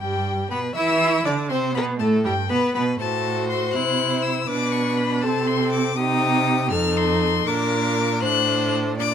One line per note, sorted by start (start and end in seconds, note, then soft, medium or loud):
0.00 0.47 G2 medium
0.00 0.47 G3 medium
0.00 0.47 G4 medium
0.00 0.50 G5 loud
0.50 0.75 B2 medium
0.50 0.58 B3 loud
0.50 0.75 B4 medium
0.50 0.59 B5 medium
0.75 1.25 E3 loud
0.75 1.27 E4 loud
0.75 1.25 E5 loud
0.75 1.27 E6 loud
1.25 1.52 D3 medium
1.25 1.52 D4 medium
1.25 1.34 D5 medium
1.25 1.49 D6 medium
1.49 1.77 C3 medium
1.49 1.74 C4 medium
1.49 1.75 C5 loud
1.49 1.57 C6 loud
1.74 2.02 B2 medium
1.74 1.99 B3 medium
1.74 1.84 B4 loud
1.74 1.82 B5 medium
1.99 2.27 A2 medium
1.99 2.24 A3 loud
1.99 2.25 A4 medium
1.99 2.07 A5 medium
2.24 2.50 G2 medium
2.24 2.32 G3 medium
2.24 2.33 G4 medium
2.24 2.51 G5 loud
2.49 2.59 B2 medium
2.49 2.75 B3 medium
2.49 2.75 B4 loud
2.49 2.74 B5 loud
2.75 3.00 B2 loud
2.75 2.83 B3 loud
2.75 3.00 B4 medium
2.75 2.83 B5 loud
2.99 3.75 A2 medium
2.99 3.77 F#4 medium
2.99 4.45 C5 medium
2.99 3.48 A5 loud
3.49 3.73 C6 loud
3.74 4.48 C3 medium
3.74 4.48 E4 medium
3.74 4.24 F#6 loud
4.22 4.49 E6 loud
4.47 5.24 B2 loud
4.47 5.24 D4 medium
4.47 5.24 B4 medium
4.47 4.73 D6 loud
4.72 4.98 C#6 loud
4.97 5.23 B5 loud
5.21 5.96 C3 loud
5.21 5.97 C4 medium
5.21 5.97 A4 medium
5.21 5.49 A5 loud
5.47 5.72 C6 loud
5.72 5.98 D6 loud
5.96 6.73 C3 loud
5.96 6.68 D#4 medium
5.96 6.73 G4 loud
5.96 6.70 D#6 loud
6.71 7.46 F2 loud
6.71 7.49 D#4 loud
6.71 7.46 A4 loud
6.71 6.98 F6 loud
6.96 7.49 C6 loud
7.47 8.24 A#2 loud
7.47 8.21 D4 medium
7.47 8.23 A#4 loud
7.47 8.22 D6 loud
8.22 9.00 A2 medium
8.22 8.97 D4 medium
8.22 8.98 C5 loud
8.22 8.72 F#6 loud
8.98 9.14 A#2 medium
8.98 9.14 D4 medium
8.98 9.14 D5 medium
8.98 9.14 D6 loud